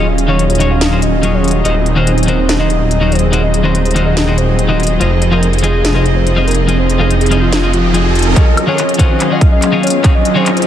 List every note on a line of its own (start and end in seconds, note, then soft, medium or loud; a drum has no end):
0.00 1.63 D#1 medium
0.00 1.61 D#3 medium
0.00 1.63 F#3 medium
0.00 4.97 F#3 medium
0.00 1.61 C#4 medium
0.00 1.63 C#4 medium
0.00 1.61 F4 medium
0.00 1.63 F4 medium
0.00 1.61 G#4 medium
0.00 1.63 G#4 medium
0.00 1.63 D#5 medium
0.08 0.24 F5 medium
0.18 closed hi-hat medium
0.28 0.42 D#3 medium
0.28 0.43 D#4 medium
0.28 0.43 F4 medium
0.28 0.43 F#4 medium
0.28 0.43 G#4 medium
0.28 0.45 C#5 medium
0.28 0.43 C#5 medium
0.39 closed hi-hat medium
0.50 0.66 C#5 medium
0.50 closed hi-hat soft
0.55 closed hi-hat medium
0.59 0.89 D#3 medium
0.59 0.89 D#4 medium
0.59 0.89 F4 medium
0.59 0.89 F#4 medium
0.59 0.90 G#4 medium
0.59 0.90 C#5 loud
0.59 closed hi-hat medium
0.71 0.96 F5 medium
0.81 snare loud
0.81 closed hi-hat medium
0.91 1.00 D#3 medium
0.91 1.00 D#4 medium
0.91 1.00 F4 medium
0.91 1.01 F#4 medium
0.91 1.01 G#4 medium
0.91 1.01 C5 medium
1.02 1.35 D#5 medium
1.02 closed hi-hat medium
1.22 1.62 D#3 medium
1.22 1.63 F#3 medium
1.22 1.62 D#4 medium
1.22 1.63 F4 medium
1.22 1.63 G#4 medium
1.22 1.63 C#5 medium
1.22 closed hi-hat medium
1.34 1.59 C#5 loud
1.44 closed hi-hat soft
1.48 closed hi-hat medium
1.51 closed hi-hat medium
1.64 4.99 D#1 medium
1.64 1.73 D#3 medium
1.64 4.98 F#3 medium
1.64 4.97 G#3 medium
1.64 8.32 C4 medium
1.64 4.98 C4 medium
1.64 1.74 D#4 medium
1.64 4.98 D#4 medium
1.64 1.74 F#4 medium
1.64 4.98 G#4 medium
1.64 1.74 A#4 medium
1.64 1.74 C5 medium
1.64 4.98 D#5 medium
1.64 1.90 D#5 loud
1.64 closed hi-hat medium
1.86 closed hi-hat medium
1.96 2.10 D#3 medium
1.96 2.10 D#4 medium
1.96 2.11 F#4 medium
1.96 2.11 A#4 medium
1.96 2.21 C5 medium
1.96 2.11 C5 medium
2.07 closed hi-hat medium
2.18 closed hi-hat soft
2.23 closed hi-hat medium
2.27 2.57 D#3 medium
2.27 2.57 D#4 medium
2.27 2.57 F#4 medium
2.27 2.57 A#4 medium
2.27 2.53 C5 medium
2.27 2.58 C5 loud
2.27 closed hi-hat medium
2.49 snare loud
2.49 closed hi-hat medium
2.59 2.68 D#3 medium
2.59 2.68 D#4 medium
2.59 2.68 F#4 medium
2.59 2.69 A#4 medium
2.59 2.69 C5 medium
2.59 2.76 D#5 medium
2.70 closed hi-hat medium
2.81 3.13 D#5 medium
2.91 closed hi-hat medium
3.01 3.15 D#3 medium
3.01 3.15 D#4 medium
3.01 3.16 F#4 medium
3.01 3.16 A#4 medium
3.01 3.16 C5 medium
3.12 3.37 C5 loud
3.12 closed hi-hat soft
3.15 closed hi-hat medium
3.19 closed hi-hat medium
3.32 3.41 D#3 medium
3.32 3.42 D#4 medium
3.32 3.42 F#4 medium
3.32 3.42 A#4 medium
3.32 3.42 C5 medium
3.32 closed hi-hat medium
3.43 3.60 D#5 medium
3.54 closed hi-hat medium
3.63 3.78 D#3 medium
3.63 3.78 D#4 medium
3.63 3.78 F#4 medium
3.63 3.79 A#4 medium
3.63 3.81 C5 medium
3.63 3.79 C5 loud
3.75 closed hi-hat medium
3.85 4.02 C5 medium
3.85 closed hi-hat soft
3.91 closed hi-hat medium
3.95 4.24 D#3 medium
3.95 4.25 D#4 medium
3.95 4.25 F#4 medium
3.95 4.25 A#4 medium
3.95 4.25 C5 loud
3.95 closed hi-hat medium
4.06 4.31 D#5 medium
4.17 snare loud
4.17 closed hi-hat medium
4.26 4.36 D#3 medium
4.26 4.36 D#4 medium
4.26 4.36 F#4 medium
4.26 4.36 A#4 medium
4.26 4.37 C5 medium
4.38 4.63 C5 medium
4.38 closed hi-hat medium
4.59 closed hi-hat medium
4.68 4.83 D#3 medium
4.68 4.83 D#4 medium
4.68 4.83 F#4 medium
4.68 4.84 A#4 medium
4.68 4.84 C5 medium
4.68 4.94 D#5 loud
4.80 closed hi-hat soft
4.83 closed hi-hat medium
4.87 closed hi-hat medium
5.00 8.34 F1 medium
5.00 5.09 F3 medium
5.00 8.34 F3 medium
5.00 8.33 F3 medium
5.00 8.34 C4 medium
5.00 8.34 D#4 medium
5.00 8.33 D#4 medium
5.00 5.09 F4 medium
5.00 8.34 G#4 medium
5.00 5.10 G#4 medium
5.00 8.33 G#4 medium
5.00 5.33 C5 medium
5.00 5.10 C5 medium
5.00 8.34 D#5 medium
5.00 5.10 D#5 medium
5.00 closed hi-hat medium
5.00 riser medium
5.22 closed hi-hat medium
5.31 5.46 F3 medium
5.31 5.46 F4 medium
5.31 5.46 G#4 medium
5.31 5.57 A#4 loud
5.31 5.47 C5 medium
5.31 5.47 D#5 medium
5.43 closed hi-hat medium
5.53 closed hi-hat soft
5.58 closed hi-hat medium
5.63 5.92 F3 medium
5.63 5.92 F4 medium
5.63 5.96 G#4 medium
5.63 5.93 G#4 medium
5.63 5.93 C5 medium
5.63 5.93 D#5 loud
5.63 closed hi-hat medium
5.85 snare loud
5.85 closed hi-hat medium
5.94 6.03 F3 medium
5.94 6.04 F4 medium
5.94 6.04 G#4 medium
5.94 6.12 C5 medium
5.94 6.04 C5 medium
5.94 6.04 D#5 medium
6.06 closed hi-hat medium
6.16 6.41 C5 medium
6.27 closed hi-hat medium
6.36 6.51 F3 medium
6.36 6.51 F4 medium
6.36 6.51 G#4 medium
6.36 6.51 C5 medium
6.36 6.52 D#5 medium
6.47 6.72 A#4 medium
6.47 closed hi-hat soft
6.51 closed hi-hat medium
6.55 closed hi-hat medium
6.67 6.77 F3 medium
6.67 6.77 F4 medium
6.67 6.77 G#4 medium
6.67 6.78 C5 medium
6.67 6.78 D#5 medium
6.67 closed hi-hat medium
6.79 7.01 C5 medium
6.90 closed hi-hat medium
6.99 7.14 F3 medium
6.99 7.14 F4 medium
6.99 7.16 G#4 medium
6.99 7.14 G#4 medium
6.99 7.14 C5 medium
6.99 7.15 D#5 loud
7.11 closed hi-hat medium
7.21 7.37 G#4 medium
7.21 closed hi-hat soft
7.26 closed hi-hat medium
7.30 7.60 F3 medium
7.30 7.60 F4 medium
7.30 7.60 G#4 medium
7.30 7.61 C5 medium
7.30 7.61 D#5 loud
7.30 closed hi-hat medium
7.42 7.67 F4 medium
7.53 snare loud
7.53 closed hi-hat medium
7.62 7.71 F3 medium
7.62 7.72 F4 medium
7.62 7.72 G#4 medium
7.62 7.72 C5 medium
7.62 7.72 D#5 medium
7.73 7.98 F4 medium
7.73 closed hi-hat medium
7.93 8.33 F3 medium
7.93 8.34 F4 medium
7.93 8.34 G#4 medium
7.93 8.34 C5 medium
7.93 8.34 D#5 medium
7.93 closed hi-hat medium
8.05 8.30 F4 medium
8.15 closed hi-hat soft
8.19 closed hi-hat medium
8.22 closed hi-hat medium
8.35 10.67 D#2 medium
8.35 8.45 D#3 medium
8.35 10.67 D#3 medium
8.35 8.97 F#3 medium
8.35 10.67 F#3 medium
8.35 8.45 C#4 medium
8.35 8.97 C#4 medium
8.35 10.67 C#4 medium
8.35 8.97 F4 medium
8.35 10.67 F4 medium
8.35 8.45 F4 medium
8.35 8.46 F#4 medium
8.35 8.97 G#4 medium
8.35 10.67 G#4 medium
8.35 8.46 G#4 medium
8.35 8.61 D#5 medium
8.35 8.97 D#5 loud
8.35 kick loud
8.35 clap soft
8.35 closed hi-hat medium
8.35 riser medium
8.57 closed hi-hat medium
8.57 high woodblock medium
8.67 8.81 D#3 medium
8.67 8.82 C#4 medium
8.67 8.82 F4 medium
8.67 8.82 F#4 medium
8.67 8.82 G#4 loud
8.67 8.93 C#5 medium
8.78 clap medium
8.78 closed hi-hat medium
8.89 closed hi-hat medium
8.94 closed hi-hat medium
8.98 9.28 D#3 medium
8.98 9.07 F#3 medium
8.98 9.28 C#4 medium
8.98 9.07 C#4 medium
8.98 9.28 F4 medium
8.98 9.07 F4 medium
8.98 9.29 F#4 medium
8.98 9.07 G#4 medium
8.98 9.29 G#4 loud
8.98 9.32 C5 medium
8.98 9.07 D#5 loud
8.98 kick medium
8.98 closed hi-hat medium
9.10 9.39 F#3 medium
9.10 9.39 C#4 medium
9.10 9.39 F4 medium
9.10 9.39 G#4 medium
9.10 9.39 D#5 loud
9.20 clap medium
9.20 closed hi-hat medium
9.30 9.39 D#3 medium
9.30 9.39 C#4 medium
9.30 9.40 F4 medium
9.30 9.40 F#4 medium
9.30 9.40 G#4 medium
9.30 9.47 D#5 medium
9.41 10.02 F#3 medium
9.41 10.02 C#4 medium
9.41 10.02 F4 medium
9.41 10.02 G#4 medium
9.41 10.02 F5 loud
9.41 kick loud
9.41 closed hi-hat medium
9.52 9.77 D#5 loud
9.62 clap medium
9.62 closed hi-hat medium
9.72 9.86 D#3 medium
9.72 9.87 C#4 medium
9.72 9.87 F4 medium
9.72 9.87 F#4 medium
9.72 9.87 G#4 medium
9.83 10.08 C#5 loud
9.83 closed hi-hat soft
9.87 closed hi-hat medium
9.90 closed hi-hat medium
10.03 10.13 D#3 medium
10.03 10.65 F#3 loud
10.03 10.13 C#4 medium
10.03 10.65 C#4 medium
10.03 10.65 F4 medium
10.03 10.13 F4 medium
10.03 10.13 F#4 medium
10.03 10.65 G#4 medium
10.03 10.14 G#4 medium
10.03 10.65 D#5 loud
10.03 kick loud
10.03 clap medium
10.03 closed hi-hat medium
10.15 10.37 D#5 medium
10.25 closed hi-hat medium
10.35 10.49 D#3 medium
10.35 10.50 C#4 medium
10.35 10.50 F4 medium
10.35 10.50 F#4 medium
10.35 10.50 G#4 loud
10.35 10.52 C5 medium
10.46 clap medium
10.46 closed hi-hat medium
10.57 10.67 C5 medium
10.57 closed hi-hat soft
10.62 closed hi-hat medium